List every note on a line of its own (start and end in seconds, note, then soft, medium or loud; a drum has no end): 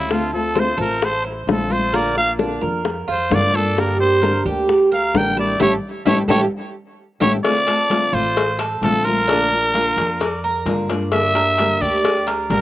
0.00 0.72 D2 medium
0.00 0.14 E4 medium
0.09 0.32 D3 medium
0.09 0.32 A3 medium
0.09 0.32 C4 medium
0.09 0.32 F4 medium
0.09 0.33 F4 medium
0.09 0.54 A4 medium
0.09 high bongo medium
0.33 0.55 A3 soft
0.33 0.56 C4 soft
0.33 0.55 F4 medium
0.33 0.61 A4 medium
0.33 high conga soft
0.55 0.78 D3 medium
0.55 0.78 A3 medium
0.55 0.79 C4 medium
0.55 0.78 F4 medium
0.55 0.77 C5 medium
0.55 high bongo medium
0.55 high conga loud
0.59 0.80 C5 loud
0.78 1.43 A1 medium
0.78 1.01 A3 soft
0.78 1.01 C4 soft
0.78 1.01 F4 medium
0.78 1.23 A4 medium
0.78 1.06 A#4 medium
0.78 high conga soft
1.01 1.26 C5 loud
1.01 muted nylon-string guitar stroke medium
1.01 high bongo medium
1.01 high conga soft
1.24 1.43 E4 medium
1.24 1.69 C5 medium
1.24 high conga soft
1.47 2.56 A#1 medium
1.47 1.69 D3 medium
1.47 1.70 A3 medium
1.47 1.69 C4 medium
1.47 1.68 F4 medium
1.47 1.73 A4 medium
1.47 high bongo medium
1.47 low bongo medium
1.47 high conga medium
1.70 1.93 A3 soft
1.70 1.93 C4 soft
1.70 1.92 F4 medium
1.70 1.97 C5 loud
1.70 high conga medium
1.92 2.15 D3 medium
1.92 2.15 A#3 medium
1.92 2.38 A#3 medium
1.92 2.15 D4 medium
1.92 2.14 F4 medium
1.92 2.17 D5 medium
1.92 high bongo medium
2.15 2.38 A#3 soft
2.15 2.38 D4 soft
2.15 2.38 F4 medium
2.15 2.31 F5 loud
2.15 high bongo soft
2.15 high conga soft
2.38 2.61 D3 medium
2.38 2.61 A#3 medium
2.38 2.61 D4 medium
2.38 2.60 F4 medium
2.38 high bongo medium
2.38 high conga medium
2.61 3.05 F2 medium
2.61 2.84 A#3 soft
2.61 2.84 D4 soft
2.61 2.84 F4 medium
2.61 3.06 A#4 medium
2.61 high bongo soft
2.61 high conga soft
2.85 muted nylon-string guitar stroke medium
2.85 high bongo medium
2.85 high conga soft
3.08 3.29 F2 medium
3.08 3.52 F4 medium
3.08 3.36 C5 loud
3.08 high bongo soft
3.08 high conga soft
3.30 4.40 G2 loud
3.30 3.53 D3 medium
3.30 3.53 A#3 medium
3.30 3.53 D4 medium
3.30 3.53 F4 medium
3.30 high bongo medium
3.30 low bongo medium
3.30 high conga medium
3.34 3.57 D5 loud
3.53 3.76 A#3 soft
3.53 3.76 D4 medium
3.53 3.76 D4 soft
3.53 3.76 F4 soft
3.53 3.82 A4 loud
3.53 high conga medium
3.76 3.99 D3 medium
3.76 3.99 G3 medium
3.76 3.99 A#3 medium
3.76 3.99 D4 medium
3.76 4.21 G4 medium
3.76 3.98 G4 medium
3.76 4.00 A#4 medium
3.76 high bongo medium
3.99 4.21 A#3 soft
3.99 4.21 D4 soft
3.99 4.21 G4 soft
3.99 4.43 C5 loud
3.99 high conga soft
4.21 4.44 D3 medium
4.21 4.45 G3 medium
4.21 4.45 A#3 medium
4.21 4.45 D4 medium
4.21 4.44 G4 medium
4.21 4.45 A#4 medium
4.21 high bongo medium
4.21 high conga loud
4.45 5.10 D2 medium
4.45 4.68 A#3 soft
4.45 4.68 D4 soft
4.45 4.68 G4 medium
4.45 4.90 G4 medium
4.45 high conga soft
4.69 muted nylon-string guitar stroke medium
4.69 high bongo medium
4.69 high conga soft
4.92 5.36 A#4 medium
4.92 5.19 F5 loud
4.92 high conga soft
5.14 5.57 A1 loud
5.14 5.36 D3 medium
5.14 5.37 G3 medium
5.14 5.37 A#3 medium
5.14 5.37 D4 medium
5.14 5.35 G4 medium
5.14 5.39 G5 loud
5.14 high bongo medium
5.14 low bongo medium
5.14 high conga medium
5.36 5.59 A#3 soft
5.36 5.60 D4 soft
5.36 5.58 E4 medium
5.36 5.59 G4 medium
5.36 5.60 D5 medium
5.36 high conga medium
5.60 5.77 A1 medium
5.60 5.75 A3 loud
5.60 5.75 C#4 loud
5.60 5.75 E4 medium
5.60 5.75 E4 loud
5.60 5.75 G4 medium
5.60 5.75 A4 medium
5.60 5.73 C#5 medium
5.60 low bongo loud
5.60 high conga medium
6.05 6.23 A1 medium
6.05 6.21 A3 medium
6.05 6.21 C#4 medium
6.05 6.21 E4 loud
6.05 6.21 E4 medium
6.05 6.21 G4 medium
6.05 6.21 A4 medium
6.05 6.18 C#5 medium
6.05 low bongo loud
6.05 high conga loud
6.28 6.46 A1 loud
6.28 6.44 A3 loud
6.28 6.44 C#4 medium
6.28 6.43 E4 medium
6.28 6.44 E4 medium
6.28 6.44 G4 medium
6.28 6.44 A4 loud
6.28 6.41 C#5 medium
6.28 low bongo loud
6.28 high conga medium
7.20 7.38 A1 loud
7.20 7.36 A3 loud
7.20 7.36 C#4 loud
7.20 7.36 E4 medium
7.20 7.36 G4 medium
7.20 7.36 A4 medium
7.20 7.33 C#5 medium
7.20 low bongo medium
7.20 high conga medium
7.44 7.66 D3 medium
7.44 7.66 A3 medium
7.44 7.66 C4 medium
7.44 7.65 F4 medium
7.44 8.15 D5 loud
7.44 cowbell loud
7.67 7.89 A3 soft
7.67 7.90 C4 soft
7.67 7.89 F4 soft
7.67 8.12 A4 medium
7.67 cowbell medium
7.67 high conga soft
7.89 8.12 D3 medium
7.89 8.12 A3 medium
7.89 8.13 C4 medium
7.89 8.12 F4 medium
7.89 cowbell medium
7.89 high conga loud
8.13 8.78 A1 loud
8.13 8.36 A3 soft
8.13 8.36 C4 soft
8.13 8.58 F4 medium
8.13 8.36 F4 soft
8.13 8.60 C5 loud
8.13 high conga soft
8.37 muted nylon-string guitar stroke medium
8.37 cowbell loud
8.37 high conga soft
8.59 9.04 A4 medium
8.59 cowbell medium
8.59 high conga soft
8.82 9.91 A#1 medium
8.82 9.05 D3 medium
8.82 9.05 A3 medium
8.82 9.05 C4 medium
8.82 9.05 F4 medium
8.82 9.06 A4 loud
8.82 cowbell medium
8.82 high conga medium
9.05 9.29 A3 soft
9.05 9.29 C4 soft
9.05 9.27 F4 medium
9.05 9.28 F4 soft
9.05 10.43 A#4 loud
9.05 high conga medium
9.28 9.51 D3 medium
9.28 9.51 A#3 medium
9.28 9.73 D4 medium
9.28 9.52 D4 medium
9.28 9.51 F4 medium
9.28 cowbell medium
9.52 9.74 A#3 soft
9.52 9.74 F4 soft
9.52 high conga soft
9.74 9.97 D3 medium
9.74 9.97 A#3 medium
9.74 9.97 D4 medium
9.74 10.19 F4 medium
9.74 9.97 F4 medium
9.74 cowbell medium
9.74 high conga medium
9.96 10.62 F2 loud
9.96 10.20 A#3 soft
9.96 10.20 D4 soft
9.96 10.20 F4 medium
9.96 cowbell medium
9.96 high conga soft
10.20 10.43 D5 medium
10.20 muted nylon-string guitar stroke medium
10.20 cowbell loud
10.20 high conga soft
10.44 10.88 A#4 medium
10.44 high conga soft
10.66 11.75 G2 loud
10.66 10.89 D3 medium
10.66 10.89 A#3 medium
10.66 10.89 D4 medium
10.66 10.88 F4 medium
10.66 cowbell medium
10.66 high conga medium
10.89 11.12 A#3 soft
10.89 11.12 D4 soft
10.89 11.11 F4 soft
10.89 11.34 D5 medium
10.89 cowbell medium
10.89 high conga medium
11.12 11.34 D3 medium
11.12 11.35 G3 medium
11.12 11.35 A#3 medium
11.12 11.34 D4 medium
11.12 11.33 G4 medium
11.12 11.83 E5 loud
11.12 cowbell loud
11.35 11.58 A#3 soft
11.35 11.58 D4 soft
11.35 11.57 G4 medium
11.35 11.80 A#4 medium
11.35 cowbell medium
11.35 high conga soft
11.58 11.80 D3 medium
11.58 11.80 G3 medium
11.58 11.81 A#3 medium
11.58 11.80 D4 medium
11.58 11.79 G4 medium
11.58 cowbell medium
11.58 high conga loud
11.80 12.46 D2 loud
11.80 12.03 A#3 soft
11.80 12.03 D4 soft
11.80 12.03 G4 medium
11.80 12.26 G4 medium
11.80 12.27 D5 loud
11.80 high conga soft
12.04 muted nylon-string guitar stroke medium
12.04 cowbell loud
12.04 high conga soft
12.27 12.61 A#4 medium
12.27 cowbell medium
12.27 high conga soft
12.49 12.61 A1 loud
12.49 12.61 D3 medium
12.49 12.61 G3 medium
12.49 12.61 A#3 medium
12.49 12.61 D4 medium
12.49 12.61 G4 medium
12.49 12.61 A#4 loud
12.49 cowbell medium
12.49 high conga medium